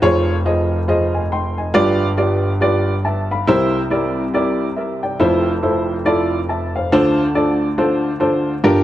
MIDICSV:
0, 0, Header, 1, 2, 480
1, 0, Start_track
1, 0, Tempo, 430416
1, 33, Time_signature, 4, 2, 24, 8
1, 9854, End_track
2, 0, Start_track
2, 0, Title_t, "Upright piano"
2, 0, Program_c, 0, 0
2, 22, Note_on_c, 0, 41, 65
2, 22, Note_on_c, 0, 65, 97
2, 22, Note_on_c, 0, 68, 104
2, 26, Note_on_c, 0, 29, 71
2, 27, Note_on_c, 0, 72, 92
2, 29, Note_on_c, 0, 73, 119
2, 389, Note_off_c, 0, 65, 0
2, 389, Note_off_c, 0, 68, 0
2, 392, Note_off_c, 0, 72, 0
2, 393, Note_off_c, 0, 73, 0
2, 503, Note_on_c, 0, 65, 78
2, 509, Note_on_c, 0, 68, 74
2, 511, Note_on_c, 0, 75, 95
2, 512, Note_on_c, 0, 72, 66
2, 870, Note_off_c, 0, 65, 0
2, 873, Note_off_c, 0, 68, 0
2, 874, Note_off_c, 0, 75, 0
2, 875, Note_off_c, 0, 72, 0
2, 981, Note_on_c, 0, 68, 81
2, 982, Note_on_c, 0, 65, 80
2, 982, Note_on_c, 0, 72, 74
2, 990, Note_on_c, 0, 75, 96
2, 1269, Note_off_c, 0, 75, 0
2, 1277, Note_on_c, 0, 80, 60
2, 1286, Note_on_c, 0, 75, 52
2, 1349, Note_off_c, 0, 68, 0
2, 1350, Note_off_c, 0, 65, 0
2, 1350, Note_off_c, 0, 72, 0
2, 1460, Note_off_c, 0, 80, 0
2, 1465, Note_off_c, 0, 75, 0
2, 1473, Note_on_c, 0, 84, 66
2, 1479, Note_on_c, 0, 79, 66
2, 1754, Note_off_c, 0, 84, 0
2, 1758, Note_off_c, 0, 79, 0
2, 1761, Note_on_c, 0, 80, 62
2, 1768, Note_on_c, 0, 75, 52
2, 1907, Note_off_c, 0, 41, 0
2, 1909, Note_off_c, 0, 29, 0
2, 1939, Note_on_c, 0, 65, 120
2, 1943, Note_on_c, 0, 31, 79
2, 1944, Note_on_c, 0, 43, 78
2, 1944, Note_on_c, 0, 67, 98
2, 1945, Note_on_c, 0, 71, 99
2, 1946, Note_on_c, 0, 74, 127
2, 2223, Note_off_c, 0, 80, 0
2, 2226, Note_off_c, 0, 75, 0
2, 2310, Note_off_c, 0, 65, 0
2, 2312, Note_off_c, 0, 67, 0
2, 2312, Note_off_c, 0, 71, 0
2, 2313, Note_off_c, 0, 74, 0
2, 2423, Note_on_c, 0, 71, 64
2, 2425, Note_on_c, 0, 65, 80
2, 2428, Note_on_c, 0, 67, 72
2, 2430, Note_on_c, 0, 74, 90
2, 2792, Note_off_c, 0, 71, 0
2, 2793, Note_off_c, 0, 65, 0
2, 2794, Note_off_c, 0, 67, 0
2, 2795, Note_off_c, 0, 74, 0
2, 2908, Note_on_c, 0, 65, 81
2, 2914, Note_on_c, 0, 67, 74
2, 2915, Note_on_c, 0, 71, 79
2, 2919, Note_on_c, 0, 74, 100
2, 3274, Note_off_c, 0, 65, 0
2, 3277, Note_off_c, 0, 67, 0
2, 3278, Note_off_c, 0, 71, 0
2, 3280, Note_off_c, 0, 74, 0
2, 3399, Note_on_c, 0, 81, 63
2, 3405, Note_on_c, 0, 76, 57
2, 3679, Note_off_c, 0, 81, 0
2, 3682, Note_off_c, 0, 76, 0
2, 3695, Note_on_c, 0, 77, 59
2, 3696, Note_on_c, 0, 83, 70
2, 3828, Note_off_c, 0, 31, 0
2, 3828, Note_off_c, 0, 43, 0
2, 3874, Note_on_c, 0, 64, 114
2, 3879, Note_on_c, 0, 67, 91
2, 3880, Note_on_c, 0, 48, 75
2, 3881, Note_on_c, 0, 36, 72
2, 3882, Note_on_c, 0, 70, 92
2, 3884, Note_on_c, 0, 72, 122
2, 4151, Note_off_c, 0, 77, 0
2, 4151, Note_off_c, 0, 83, 0
2, 4238, Note_off_c, 0, 64, 0
2, 4240, Note_off_c, 0, 67, 0
2, 4242, Note_off_c, 0, 70, 0
2, 4243, Note_off_c, 0, 72, 0
2, 4352, Note_on_c, 0, 64, 84
2, 4358, Note_on_c, 0, 67, 74
2, 4358, Note_on_c, 0, 70, 70
2, 4362, Note_on_c, 0, 74, 78
2, 4717, Note_off_c, 0, 64, 0
2, 4720, Note_off_c, 0, 67, 0
2, 4720, Note_off_c, 0, 70, 0
2, 4722, Note_off_c, 0, 74, 0
2, 4836, Note_on_c, 0, 64, 81
2, 4837, Note_on_c, 0, 67, 74
2, 4841, Note_on_c, 0, 70, 71
2, 4846, Note_on_c, 0, 74, 91
2, 5198, Note_off_c, 0, 64, 0
2, 5199, Note_off_c, 0, 67, 0
2, 5201, Note_off_c, 0, 70, 0
2, 5203, Note_off_c, 0, 74, 0
2, 5313, Note_on_c, 0, 76, 61
2, 5317, Note_on_c, 0, 70, 51
2, 5596, Note_off_c, 0, 76, 0
2, 5598, Note_off_c, 0, 70, 0
2, 5608, Note_on_c, 0, 79, 68
2, 5615, Note_on_c, 0, 74, 56
2, 5755, Note_off_c, 0, 48, 0
2, 5756, Note_off_c, 0, 36, 0
2, 5794, Note_on_c, 0, 64, 101
2, 5796, Note_on_c, 0, 65, 94
2, 5800, Note_on_c, 0, 29, 75
2, 5800, Note_on_c, 0, 69, 85
2, 5803, Note_on_c, 0, 41, 71
2, 5804, Note_on_c, 0, 72, 103
2, 6067, Note_off_c, 0, 79, 0
2, 6071, Note_off_c, 0, 74, 0
2, 6157, Note_off_c, 0, 64, 0
2, 6159, Note_off_c, 0, 65, 0
2, 6160, Note_off_c, 0, 69, 0
2, 6162, Note_off_c, 0, 72, 0
2, 6275, Note_on_c, 0, 65, 65
2, 6276, Note_on_c, 0, 64, 78
2, 6278, Note_on_c, 0, 69, 70
2, 6281, Note_on_c, 0, 72, 87
2, 6638, Note_off_c, 0, 64, 0
2, 6638, Note_off_c, 0, 65, 0
2, 6639, Note_off_c, 0, 69, 0
2, 6641, Note_off_c, 0, 72, 0
2, 6749, Note_on_c, 0, 64, 80
2, 6756, Note_on_c, 0, 69, 77
2, 6756, Note_on_c, 0, 74, 94
2, 6759, Note_on_c, 0, 65, 83
2, 7114, Note_off_c, 0, 64, 0
2, 7118, Note_off_c, 0, 69, 0
2, 7118, Note_off_c, 0, 74, 0
2, 7119, Note_off_c, 0, 65, 0
2, 7241, Note_on_c, 0, 81, 63
2, 7249, Note_on_c, 0, 76, 60
2, 7519, Note_off_c, 0, 81, 0
2, 7523, Note_off_c, 0, 76, 0
2, 7535, Note_on_c, 0, 77, 67
2, 7545, Note_on_c, 0, 72, 58
2, 7674, Note_off_c, 0, 29, 0
2, 7675, Note_off_c, 0, 41, 0
2, 7712, Note_off_c, 0, 72, 0
2, 7720, Note_on_c, 0, 65, 103
2, 7722, Note_on_c, 0, 62, 114
2, 7724, Note_on_c, 0, 38, 74
2, 7726, Note_on_c, 0, 69, 97
2, 7727, Note_on_c, 0, 50, 75
2, 7729, Note_on_c, 0, 72, 121
2, 7989, Note_off_c, 0, 77, 0
2, 8079, Note_off_c, 0, 65, 0
2, 8080, Note_off_c, 0, 62, 0
2, 8082, Note_off_c, 0, 69, 0
2, 8083, Note_off_c, 0, 72, 0
2, 8193, Note_on_c, 0, 62, 77
2, 8195, Note_on_c, 0, 65, 63
2, 8198, Note_on_c, 0, 69, 74
2, 8200, Note_on_c, 0, 74, 91
2, 8555, Note_off_c, 0, 62, 0
2, 8556, Note_off_c, 0, 65, 0
2, 8557, Note_off_c, 0, 69, 0
2, 8559, Note_off_c, 0, 74, 0
2, 8675, Note_on_c, 0, 62, 93
2, 8675, Note_on_c, 0, 65, 83
2, 8680, Note_on_c, 0, 69, 75
2, 8680, Note_on_c, 0, 72, 92
2, 9036, Note_off_c, 0, 62, 0
2, 9036, Note_off_c, 0, 65, 0
2, 9038, Note_off_c, 0, 69, 0
2, 9038, Note_off_c, 0, 72, 0
2, 9144, Note_on_c, 0, 62, 90
2, 9150, Note_on_c, 0, 72, 91
2, 9151, Note_on_c, 0, 65, 75
2, 9151, Note_on_c, 0, 69, 77
2, 9510, Note_off_c, 0, 62, 0
2, 9513, Note_off_c, 0, 65, 0
2, 9513, Note_off_c, 0, 69, 0
2, 9513, Note_off_c, 0, 72, 0
2, 9593, Note_off_c, 0, 38, 0
2, 9594, Note_off_c, 0, 50, 0
2, 9632, Note_on_c, 0, 62, 109
2, 9633, Note_on_c, 0, 43, 74
2, 9633, Note_on_c, 0, 65, 103
2, 9634, Note_on_c, 0, 31, 76
2, 9638, Note_on_c, 0, 67, 111
2, 9639, Note_on_c, 0, 70, 117
2, 9854, Note_off_c, 0, 31, 0
2, 9854, Note_off_c, 0, 43, 0
2, 9854, Note_off_c, 0, 62, 0
2, 9854, Note_off_c, 0, 65, 0
2, 9854, Note_off_c, 0, 67, 0
2, 9854, Note_off_c, 0, 70, 0
2, 9854, End_track
0, 0, End_of_file